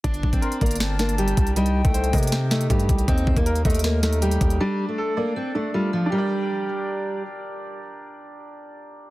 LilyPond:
<<
  \new Staff \with { instrumentName = "Flute" } { \time 4/4 \key g \minor \tempo 4 = 158 r4 c'''8 bes''8 a''2 | g''2. r4 | r1 | r1 |
r1 | r1 | }
  \new Staff \with { instrumentName = "Grand piano" } { \time 4/4 \key g \minor d'4 bes'8 d''4 d'8 g'4 | ees'4 c''8 ees''4 ees'8 g'4 | ees'4 bes'8 ees''4 ees'8 g'4 | d'4 a'8 d''4 d'8 f'4 |
<d' g' bes' d''>1~ | <d' g' bes' d''>1 | }
  \new Staff \with { instrumentName = "Steel-string acoustic guitar" } { \time 4/4 \key g \minor d'8. c'8. bes8 c'8 bes8 g4 | g8. a8. bes8 c'8 a8 g4 | c'8. bes8. a8 bes8 a8 g4 | g8. a8. bes8 c'8 a8 g8 f8 |
g2. r4 | r1 | }
  \new Staff \with { instrumentName = "808-style bass" } { \clef bass \time 4/4 \key g \minor g,,8 bes,,8 r8 g,,2 c,8~ | c,8. c,8. c4. g,8 c,8 | ees,8 ees,16 ees,8. ees,2 ees,8 | r1 |
r1 | r1 | }
  \new DrumStaff \with { instrumentName = "Drums" } \drummode { \time 4/4 <hh bd>16 hh16 bd16 <hh bd>16 hh16 hh16 <hh bd>32 hh32 hh32 hh32 <hh sn>8 <hh sn>16 hh16 hh16 hh16 <hh bd>16 hh16 | hh16 hh8 <hh bd>16 hh16 hh16 <hh hho bd>32 hh32 hh32 hh32 <hh sn>8 <hh sn>16 hh16 <hh bd>16 hh16 <hh bd>16 hh16 | <hh bd>16 hh16 bd16 <hh bd>16 hh16 hh16 <hh bd>32 hh32 hh32 hh32 <hh sn>8 <hh sn>16 hh16 hh16 hh16 <hh bd>16 hh16 | r4 r4 r4 r4 |
r4 r4 r4 r4 | r4 r4 r4 r4 | }
>>